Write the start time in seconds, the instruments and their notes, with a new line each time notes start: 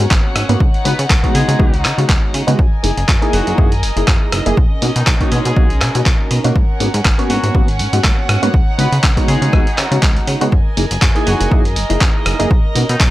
Already playing: violin section C#4 A#4 C#5 F#5
0.00 reed electric piano A#3 B3 C#4 F#4
0.11 analog synth bass G#1, kick, cross-stick, clap
0.36 analog synth bass G#2, cross-stick, open hi-hat
0.49 analog synth bass G#2, reed electric piano A#3 B3 C#4 F#4, closed hi-hat
0.60 analog synth bass C#2, violin section D#4, kick
0.74 closed hi-hat
0.84 analog synth bass C#3, reed electric piano G#3 B3 D#4 F#4, horn section B3 B4, open hi-hat
0.99 analog synth bass C#3, closed hi-hat
1.10 analog synth bass C#2, kick, cross-stick, clap
1.23 reed electric piano G#3 B3 D#4 F#4, kick, closed hi-hat
1.35 analog synth bass C#3, horn section G#3 G#4, open hi-hat
1.48 analog synth bass C#3, closed hi-hat
1.59 analog synth bass C#2, reed electric piano G#3 B3 D#4 F#4, kick
1.74 closed hi-hat
1.84 analog synth bass C#3, cross-stick, clap, open hi-hat
1.97 analog synth bass C#3, reed electric piano G#3 B3 D#4 F#4, closed hi-hat
2.09 analog synth bass C#2, kick, clap
2.34 analog synth bass C#3, open hi-hat
2.47 analog synth bass C#3, reed electric piano G#3 B3 D#4 F#4, closed hi-hat
2.59 analog synth bass F#2, violin section A#4 D#5 G#5, kick
2.83 analog synth bass F#1, reed electric piano A#3 D#4 E4 G#4, open hi-hat
2.97 analog synth bass F#1, closed hi-hat
3.08 analog synth bass F#2, kick, cross-stick, clap
3.22 reed electric piano A#3 D#4 E4 G#4, closed hi-hat
3.33 analog synth bass F#1, horn section F#3 F#4, open hi-hat
3.47 analog synth bass F#1, closed hi-hat
3.58 analog synth bass F#2, reed electric piano A#3 D#4 E4 G#4, kick
3.72 closed hi-hat
3.83 analog synth bass F#1, open hi-hat
3.96 analog synth bass F#1, reed electric piano A#3 D#4 E4 G#4, closed hi-hat
4.08 analog synth bass F#2, kick, cross-stick, clap
4.32 analog synth bass F#1, cross-stick, open hi-hat
4.46 analog synth bass F#1, reed electric piano A#3 D#4 E4 G#4, closed hi-hat
4.57 analog synth bass B1, violin section C#4 A#4, kick
4.82 analog synth bass B2, reed electric piano A#3 C#4 D#4 F#4, open hi-hat
4.96 analog synth bass B2, horn section D#3 D#4, closed hi-hat
5.07 analog synth bass B1, kick, cross-stick, clap
5.20 reed electric piano A#3 C#4 D#4 F#4, kick, closed hi-hat
5.32 analog synth bass B2, horn section G#3 G#4, open hi-hat
5.45 analog synth bass B2, closed hi-hat
5.56 analog synth bass B1, reed electric piano A#3 C#4 D#4 F#4, kick
5.70 closed hi-hat
5.81 analog synth bass B2, cross-stick, clap, open hi-hat
5.95 analog synth bass B2, reed electric piano A#3 C#4 D#4 F#4, closed hi-hat
6.06 analog synth bass B1, kick, clap
6.31 analog synth bass B2, open hi-hat
6.44 analog synth bass B2, reed electric piano A#3 C#4 D#4 F#4, closed hi-hat
6.56 analog synth bass G#1, violin section C#4 C#5 F#5, kick
6.80 analog synth bass G#2, reed electric piano A#3 B3 C#4 F#4, open hi-hat
6.94 analog synth bass G#2, closed hi-hat
7.05 analog synth bass G#1, kick, cross-stick, clap
7.18 reed electric piano A#3 B3 C#4 F#4, closed hi-hat
7.30 analog synth bass G#2, horn section F#3 F#4, open hi-hat
7.43 analog synth bass G#2, closed hi-hat
7.54 analog synth bass G#1, reed electric piano A#3 B3 C#4 F#4, kick
7.68 closed hi-hat
7.79 analog synth bass G#2, open hi-hat
7.93 analog synth bass G#2, reed electric piano A#3 B3 C#4 F#4, closed hi-hat
8.04 analog synth bass G#1, kick, cross-stick, clap
8.29 analog synth bass G#2, cross-stick, open hi-hat
8.42 analog synth bass G#2, reed electric piano A#3 B3 C#4 F#4, closed hi-hat
8.54 analog synth bass C#2, violin section D#4, kick
8.78 analog synth bass C#3, reed electric piano G#3 B3 D#4 F#4, horn section B3 B4, open hi-hat
8.92 analog synth bass C#3, closed hi-hat
9.03 analog synth bass C#2, kick, cross-stick, clap
9.16 reed electric piano G#3 B3 D#4 F#4, kick, closed hi-hat
9.28 analog synth bass C#3, horn section G#3 G#4, open hi-hat
9.42 analog synth bass C#3, closed hi-hat
9.52 analog synth bass C#2, reed electric piano G#3 B3 D#4 F#4, kick, cross-stick
9.67 closed hi-hat
9.78 analog synth bass C#3, cross-stick, clap, open hi-hat
9.91 analog synth bass C#3, reed electric piano G#3 B3 D#4 F#4, closed hi-hat
10.03 analog synth bass C#2, kick, clap
10.16 closed hi-hat
10.27 analog synth bass C#3, open hi-hat
10.41 analog synth bass C#3, reed electric piano G#3 B3 D#4 F#4, closed hi-hat
10.52 analog synth bass F#2, violin section A#4 D#5 G#5, kick
10.77 analog synth bass F#1, reed electric piano A#3 D#4 E4 G#4, open hi-hat
10.91 analog synth bass F#1, closed hi-hat
11.02 analog synth bass F#2, kick, cross-stick, clap
11.15 reed electric piano A#3 D#4 E4 G#4, closed hi-hat
11.26 analog synth bass F#1, horn section F#3 F#4, open hi-hat
11.41 analog synth bass F#1, closed hi-hat
11.51 analog synth bass F#2, reed electric piano A#3 D#4 E4 G#4, kick
11.65 closed hi-hat
11.76 analog synth bass F#1, open hi-hat
11.89 analog synth bass F#1, reed electric piano A#3 D#4 E4 G#4, closed hi-hat
12.01 analog synth bass F#2, kick, cross-stick, clap
12.26 analog synth bass F#1, cross-stick, open hi-hat
12.39 analog synth bass F#1, reed electric piano A#3 D#4 E4 G#4, closed hi-hat
12.51 analog synth bass B1, violin section C#4, kick
12.75 analog synth bass B2, reed electric piano A#3 C#4 D#4 F#4, open hi-hat
12.89 analog synth bass B2, horn section D#3 D#4, closed hi-hat
13.00 analog synth bass B1, kick, cross-stick, clap